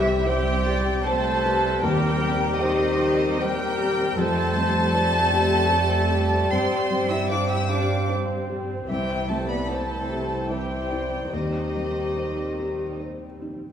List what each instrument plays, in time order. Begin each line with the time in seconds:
Already playing: double bass section C2, felt piano C2 G3, cello section E3, viola section G3 C4, french horn section C4 G4, violin section E4 E5, clarinet G4, flute G4
0.25 cello section G3, violin section G4 G5, flute C5, felt piano C5, clarinet E5
0.64 felt piano G4, clarinet D5
1.03 cello section A3, violin section A4 A5, clarinet C5, flute C5, felt piano C5
1.43 felt piano G4, clarinet B4
1.83 felt piano D#2, double bass section D#2, cello section G3, viola section C4, french horn section C4, violin section G4 G5, flute A#4, clarinet A#4
2.22 felt piano G3
2.60 cello section D#3, violin section D#4 D#5, flute G4, felt piano C5, clarinet C5
2.99 felt piano G4
3.39 cello section G3, clarinet G4, violin section G4 G5, flute A#4, felt piano C5
3.78 felt piano G4, clarinet A#4
4.17 felt piano F2, double bass section F2, viola section G3, cello section A3, french horn section C4 G4, clarinet A4, violin section A4 A5, flute C5
4.55 felt piano G3, clarinet C5
4.94 felt piano C5, clarinet D5
5.33 felt piano G4
5.72 felt piano C5
6.11 felt piano G4
6.51 felt piano G2, double bass section G2, viola section C4, cello section C4, violin section C5 C6, flute G5
6.91 felt piano G3
7.10 cello section E4, violin section E5 E6, flute G5
7.29 cello section D4, clarinet C5, felt piano C5, violin section D5 D6, flute F5
7.50 cello section E4, violin section E5 E6, flute G5
7.69 cello section D4, felt piano G4, violin section D5 D6, flute F5
8.10 felt piano C5
8.50 felt piano G4
8.88 felt piano C2, double bass section C2, viola section E3, cello section G3, french horn section C4 E4, violin section G4 G5, flute C5, clarinet E5
9.28 felt piano G3, cello section A3, violin section A4 A5, flute C5
9.47 cello section B3, violin section B4 B5, flute D5
9.67 cello section A3, violin section A4 A5, felt piano C5, flute C5, clarinet D5
10.09 felt piano G4, clarinet C5
10.49 cello section G3, violin section G4 G5, felt piano C5, flute C5, clarinet E5
10.90 felt piano E4, clarinet D5
11.32 double bass section D#2, felt piano D#2, cello section D#3, viola section G3 C4, violin section D#4 D#5, flute G4, french horn section G4, clarinet C5
11.76 felt piano G3
12.17 felt piano C5
12.60 felt piano G4
13.00 felt piano C5
13.42 felt piano D#4